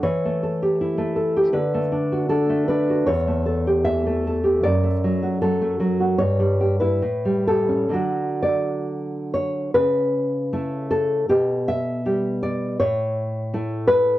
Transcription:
\new Staff \with { instrumentName = "Nylon-string guitar" } { \time 2/4 \key a \mixolydian \tempo 4 = 78 << { cis''2 | b'4 a'8 b'8 | cis''4 e''4 | d''4 a'8 r8 |
cis''8. b'8. a'8 | fis'8 d''4 cis''8 | b'4. a'8 | g'8 e''4 d''8 |
cis''4. b'8 | } \\ { e16 a16 a'16 g'16 e'16 a16 a'16 g'16 | d16 a16 d'16 fis'16 d'16 a16 d'16 fis'16 | e,16 a16 a'16 g'16 e16 a16 a'16 g'16 | fis,16 a16 fis16 fis'16 fis16 a16 fis16 fis'16 |
g,16 g16 g'16 e'16 a,16 g16 g'16 cis'16 | <d fis d'>2 | cis4 <a e'>4 | b,4 <g g'>4 |
a,4 <a e'>4 | } >> }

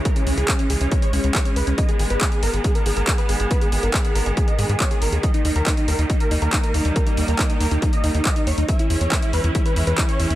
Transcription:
<<
  \new Staff \with { instrumentName = "Supersaw synth" } { \time 4/4 \key gis \minor \tempo 4 = 139 ais'16 cis'16 cis'16 gis'16 cis'16 cis'16 gis'16 cis'16 cis'16 cis''16 cis'16 cis'16 cis''16 cis'16 b'16 cis'16 | dis''16 gis'16 gis'16 b'16 gis'16 gis'16 ais'16 gis'16 gis'16 ais'16 gis'16 ais'16 gis'16 b'16 gis'16 gis'16 | b'16 gis'16 gis'16 ais'16 gis'16 gis'16 ais'16 gis'16 gis'16 dis''16 gis'16 gis'16 cis''16 gis'16 ais'16 gis'16 | dis''16 dis'16 dis'16 ais'16 dis'16 dis'16 ais'16 dis'16 dis'16 ais'16 dis'16 ais'16 dis'16 ais'16 dis'16 dis'16 |
ais'16 dis'16 dis'16 ais'16 dis'16 dis'16 ais'16 dis'16 dis'16 dis''16 dis'16 dis'16 dis''16 dis'16 cis''16 dis'16 | e''16 e'16 e'16 cis''16 e'16 e'16 b'16 e'16 e'16 b'16 e'16 b'16 e'16 cis''16 e'16 e'16 | }
  \new Staff \with { instrumentName = "String section" } { \clef bass \time 4/4 \key gis \minor << { <e gis>1 | b1~ | b1 | <g ais>1~ |
<g ais>1 | <gis cis'>1 | } \\ { cis1 | dis1~ | dis1~ | dis1~ |
dis1 | e1 | } >> }
  \new Staff \with { instrumentName = "Analog synth bass" } { \clef bass \time 4/4 \key gis \minor r8 cis,16 cis,16 r8 cis,16 cis,16 r8 cis,16 cis,16 r8 cis,16 cis,16 | r8 gis,,16 gis,,16 r8 gis,,16 gis,,16 r8 gis,,16 gis,,16 r8 gis,,16 gis,,16 | r8 gis,,16 gis,,16 r8 gis,,16 gis,,16 r8 gis,16 gis,16 r8 gis,,16 dis,16 | r8 dis,16 dis,16 r8 dis,16 dis,16 r8 dis,16 dis,16 r8 dis,16 dis,16 |
r8 dis,16 dis,16 r8 dis,16 dis,16 r8 dis,16 dis,16 r8 dis,16 dis,16 | r8 e,16 e,16 r8 e,16 e,16 r8 e,16 e,16 r8 e,16 e,16 | }
  \new DrumStaff \with { instrumentName = "Drums" } \drummode { \time 4/4 <hh bd>16 hh16 hho16 hh16 <hc hh bd>16 hh16 hho16 hh16 <hh bd>16 hh16 hho16 hh16 <hc hh bd>16 hh16 hho16 hh16 | <hh bd>16 hh16 hho16 hh16 <hc hh bd>16 hh16 hho16 hh16 <hh bd>16 hh16 hho16 hh16 <hc hh bd>16 hh16 hho16 hh16 | <hh bd>16 hh16 hho16 hh16 <hc hh bd>16 hh16 hho16 hh16 <hh bd>16 hh16 hho16 hh16 <hc hh bd>16 hh16 hho16 hh16 | <hh bd>16 hh16 hho16 hh16 <hc hh bd>16 hh16 hho16 hh16 <hh bd>16 hh16 hho16 hh16 <hc hh bd>16 hh16 hho16 hh16 |
<hh bd>16 hh16 hho16 hh16 <hc hh bd>16 hh16 hho16 hh16 <hh bd>16 hh16 hho16 hh16 <hc hh bd>16 hh16 hho16 hh16 | <hh bd>16 hh16 hho16 hh16 <hc hh bd>16 hh16 hho16 hh16 <hh bd>16 hh16 hho16 hh16 <hc hh bd>16 hh16 hho16 hh16 | }
>>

